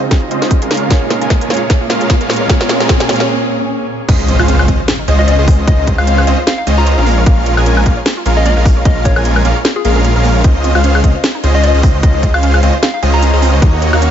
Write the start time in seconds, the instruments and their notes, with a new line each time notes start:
Already playing: ambient pad C#3 C4 D#4 F4, grand piano C#3 C4 F4 D#5, riser
0.02 synth arpeggio sound C5
0.11 synth arpeggio sound C4, kick, snare, closed hi-hat
0.22 synth arpeggio sound D#4
0.31 supersaw synth G#3 C#4 F4 C5 D#5, synth arpeggio sound C4, closed hi-hat
0.42 synth arpeggio sound F4, snare, closed hi-hat
0.51 synth arpeggio sound C4, kick, closed hi-hat
0.62 supersaw synth G#3 C#4 F4 A#4 F5, synth arpeggio sound G#4, closed hi-hat
0.71 ambient pad A#2 A#3 C#4 G#4, synth arpeggio sound A#3, snare, closed hi-hat
0.74 closed hi-hat
0.77 closed hi-hat
0.82 synth arpeggio sound C#5
0.88 grand piano A#2 A#3 G#4, supersaw synth G#3 C#4 F4 A#4 F5, synth arpeggio sound A#3, kick, snare, closed hi-hat
0.92 grand piano C#5
1.02 synth arpeggio sound F4
1.10 synth arpeggio sound A#3, snare, closed hi-hat
1.21 supersaw synth G#3 C#4 F4 A#4 G#5, synth arpeggio sound G#4, closed hi-hat
1.30 synth arpeggio sound A#3, kick, snare, closed hi-hat
1.41 synth arpeggio sound A#4, closed hi-hat
1.48 grand piano A#2 A#3 G#4, supersaw synth G#3 C#4 F4 A#4 F5, synth arpeggio sound A#3, snare, closed hi-hat
1.52 grand piano C#5, closed hi-hat
1.57 closed hi-hat
1.61 synth arpeggio sound C#5
1.70 synth arpeggio sound A#3, kick, snare, closed hi-hat
1.81 synth arpeggio sound F4
1.90 supersaw synth G#3 C#4 F4 A#4 F5, synth arpeggio sound A#3, snare, closed hi-hat
2.01 synth arpeggio sound G#4, closed hi-hat
2.10 synth arpeggio sound A#3, kick, snare, closed hi-hat
2.21 supersaw synth G#3 C#4 F4 A#4 F5, synth arpeggio sound A#4, closed hi-hat
2.30 synth arpeggio sound A#3, snare, closed hi-hat
2.33 closed hi-hat
2.36 closed hi-hat
2.41 synth arpeggio sound C#5
2.48 grand piano A#2 A#3 G#4, supersaw synth G#3 C#4 F4 A#4 F5, synth arpeggio sound A#3, kick, snare, closed hi-hat
2.52 grand piano C#5
2.61 synth arpeggio sound F4, snare
2.69 synth arpeggio sound A#3, snare, closed hi-hat
2.80 supersaw synth G#3 C#4 F4 A#4 G#5, synth arpeggio sound G#4, snare, closed hi-hat
2.89 kick, snare, closed hi-hat
3.00 synth arpeggio sound A#4, snare, closed hi-hat
3.08 grand piano A#2 A#3 G#4 C#5, supersaw synth G#3 C#4 F4 A#4 F5, synth arpeggio sound A#3, snare, closed hi-hat
3.13 closed hi-hat
3.16 closed hi-hat
3.20 synth arpeggio sound C#5, snare
4.09 detuned saw bass C#2, supersaw synth G#3 C#4 F4 C5 D#5, synth arpeggio sound C4, digital synth lead D#5, kick, closed hi-hat, crash, impact
4.20 synth arpeggio sound D#4
4.28 synth arpeggio sound C4, closed hi-hat
4.39 detuned saw bass C#2, supersaw synth G#3 C#4 F4 C5 F5, synth arpeggio sound F4, digital synth lead F5, high woodblock
4.48 synth arpeggio sound C4, closed hi-hat
4.59 synth arpeggio sound G#4, high woodblock
4.68 detuned saw bass C#2, supersaw synth G#3 C#4 F4 C5 D#5, synth arpeggio sound C4, digital synth lead D#5, kick, closed hi-hat
4.79 synth arpeggio sound C5
4.88 synth arpeggio sound C4, snare, closed hi-hat
4.99 synth arpeggio sound D#4
5.08 detuned saw bass C#2, supersaw synth G#3 C#4 F4 C5 D#5, synth arpeggio sound C4, digital synth lead D#5, closed hi-hat
5.19 synth arpeggio sound F4, soft synth lead D#5
5.28 synth arpeggio sound C4, soft synth lead D#5, closed hi-hat
5.39 detuned saw bass C#2, supersaw synth G#3 C#4 F4 C5 D#5, synth arpeggio sound G#4, digital synth lead D#5
5.48 synth arpeggio sound C4, kick, open hi-hat
5.59 synth arpeggio sound C5
5.67 detuned saw bass C#2, supersaw synth G#3 C#4 F4 C5 D#5, synth arpeggio sound C4, soft synth lead D#5, digital synth lead D#5, kick, closed hi-hat
5.79 synth arpeggio sound D#4
5.87 synth arpeggio sound C4, kick, closed hi-hat
5.98 detuned saw bass C#2, supersaw synth G#3 C#4 F4 C5 F5, synth arpeggio sound F4, soft synth lead F5, digital synth lead F5, high woodblock
6.07 synth arpeggio sound C4, closed hi-hat
6.18 synth arpeggio sound G#4, high woodblock
6.27 detuned saw bass C#2, supersaw synth G#3 C#4 F4 C5 D#5, synth arpeggio sound C4, digital synth lead D#5, closed hi-hat
6.38 synth arpeggio sound C5
6.47 synth arpeggio sound C4, soft synth lead F5, snare, closed hi-hat
6.58 synth arpeggio sound D#4, soft synth lead F5
6.67 detuned saw bass C#2, supersaw synth G#3 C#4 F4 C5 D#5, synth arpeggio sound C4, digital synth lead D#5, closed hi-hat
6.78 synth arpeggio sound F4, soft synth lead A#5
6.87 synth arpeggio sound C4, closed hi-hat
6.98 detuned saw bass A#1, supersaw synth G#3 C#4 F4 A#4 F5, synth arpeggio sound G#4, digital synth lead F5
7.07 synth arpeggio sound A#3, open hi-hat
7.18 synth arpeggio sound C#5
7.26 detuned saw bass A#1, supersaw synth G#3 C#4 F4 A#4 F5, synth arpeggio sound A#3, kick, closed hi-hat
7.38 synth arpeggio sound F4
7.46 synth arpeggio sound A#3, closed hi-hat
7.57 detuned saw bass A#1, supersaw synth G#3 C#4 F4 A#4 G#5, synth arpeggio sound G#4, digital synth lead G#5, high woodblock
7.66 synth arpeggio sound A#3, closed hi-hat
7.77 synth arpeggio sound A#4, high woodblock
7.86 detuned saw bass A#1, supersaw synth G#3 C#4 F4 A#4 F5, synth arpeggio sound A#3, digital synth lead F5, kick, closed hi-hat
7.97 synth arpeggio sound C#5
8.06 synth arpeggio sound A#3, snare, closed hi-hat
8.17 synth arpeggio sound F4
8.26 detuned saw bass A#1, supersaw synth G#3 C#4 F4 A#4 F5, synth arpeggio sound A#3, digital synth lead F5, closed hi-hat
8.37 synth arpeggio sound G#4, soft synth lead D#5
8.46 synth arpeggio sound A#3, soft synth lead D#5, closed hi-hat
8.57 detuned saw bass A#1, supersaw synth G#3 C#4 F4 A#4 F5, synth arpeggio sound A#4, digital synth lead F5
8.65 synth arpeggio sound A#3, kick, open hi-hat
8.77 synth arpeggio sound C#5
8.85 detuned saw bass A#1, supersaw synth G#3 C#4 F4 A#4 F5, synth arpeggio sound A#3, soft synth lead D#5, digital synth lead F5, kick, closed hi-hat
8.96 synth arpeggio sound F4
9.05 synth arpeggio sound A#3, soft synth lead C#5, kick, closed hi-hat
9.16 detuned saw bass A#1, supersaw synth G#3 C#4 F4 A#4 G#5, synth arpeggio sound G#4, soft synth lead C#5, digital synth lead G#5, high woodblock
9.25 synth arpeggio sound A#3, closed hi-hat
9.36 synth arpeggio sound A#4, high woodblock
9.45 detuned saw bass A#1, supersaw synth G#3 C#4 F4 A#4 F5, synth arpeggio sound A#3, digital synth lead F5, closed hi-hat
9.56 synth arpeggio sound C#5
9.65 synth arpeggio sound A#3, snare, closed hi-hat
9.76 synth arpeggio sound F4, soft synth lead G#4
9.85 detuned saw bass A#1, supersaw synth G#3 C#4 F4 A#4 F5, synth arpeggio sound A#3, soft synth lead G#4, digital synth lead F5, closed hi-hat
9.96 synth arpeggio sound G#4
10.05 synth arpeggio sound A#3, closed hi-hat
10.16 detuned saw bass A#1, supersaw synth G#3 C#4 F4 A#4 F5, synth arpeggio sound A#4, digital synth lead F5
10.24 synth arpeggio sound A#3, open hi-hat
10.35 synth arpeggio sound C#5
10.44 detuned saw bass C#2, supersaw synth G#3 C#4 F4 C5 D#5, synth arpeggio sound C4, digital synth lead D#5, kick, closed hi-hat
10.55 synth arpeggio sound D#4
10.64 synth arpeggio sound C4, closed hi-hat
10.75 detuned saw bass C#2, supersaw synth G#3 C#4 F4 C5 F5, synth arpeggio sound F4, digital synth lead F5, high woodblock
10.84 synth arpeggio sound C#4, closed hi-hat
10.95 synth arpeggio sound G#4, high woodblock
11.04 detuned saw bass C#2, supersaw synth G#3 C#4 F4 C5 D#5, synth arpeggio sound C4, digital synth lead D#5, kick, closed hi-hat
11.15 synth arpeggio sound C5
11.24 synth arpeggio sound C4, snare, closed hi-hat
11.35 synth arpeggio sound D#4
11.44 detuned saw bass C#2, supersaw synth G#3 C#4 F4 C5 D#5, synth arpeggio sound C4, digital synth lead D#5, closed hi-hat
11.55 synth arpeggio sound F4, soft synth lead D#5
11.63 synth arpeggio sound C#4, soft synth lead D#5, closed hi-hat
11.74 detuned saw bass C#2, supersaw synth G#3 C#4 F4 C5 D#5, synth arpeggio sound G#4, digital synth lead D#5
11.83 synth arpeggio sound C4, kick, open hi-hat
11.94 synth arpeggio sound C5
12.03 detuned saw bass C#2, supersaw synth G#3 C#4 F4 C5 D#5, synth arpeggio sound C4, soft synth lead D#5, digital synth lead D#5, kick, closed hi-hat
12.14 synth arpeggio sound D#4
12.23 synth arpeggio sound C4, kick, closed hi-hat
12.34 detuned saw bass C#2, supersaw synth G#3 C#4 F4 C5 F5, synth arpeggio sound F4, soft synth lead F5, digital synth lead F5, high woodblock
12.43 synth arpeggio sound C#4, closed hi-hat
12.54 synth arpeggio sound G#4, high woodblock
12.63 detuned saw bass C#2, supersaw synth G#3 C#4 F4 C5 D#5, synth arpeggio sound C4, digital synth lead D#5, closed hi-hat
12.74 synth arpeggio sound C5
12.83 synth arpeggio sound C4, soft synth lead F5, snare, closed hi-hat
12.94 synth arpeggio sound D#4, soft synth lead F5
13.03 detuned saw bass C#2, supersaw synth G#3 C#4 F4 C5 D#5, synth arpeggio sound C4, digital synth lead D#5, closed hi-hat
13.14 synth arpeggio sound F4, soft synth lead A#5
13.22 synth arpeggio sound C#4, closed hi-hat
13.33 detuned saw bass C#2, supersaw synth G#3 C#4 F4 C5 D#5, synth arpeggio sound G#4, digital synth lead D#5
13.42 synth arpeggio sound C4, open hi-hat
13.53 synth arpeggio sound C5
13.62 detuned saw bass D#2, synth arpeggio sound A#3, supersaw synth A#3 D#4 F#4 C#5 D#5, digital synth lead D#5, kick, closed hi-hat
13.73 synth arpeggio sound D#4
13.82 synth arpeggio sound A#3, closed hi-hat
13.93 detuned saw bass D#2, supersaw synth A#3 D#4 F#4 C#5 F5, synth arpeggio sound F#4, digital synth lead F5, high woodblock
14.02 synth arpeggio sound C#4, closed hi-hat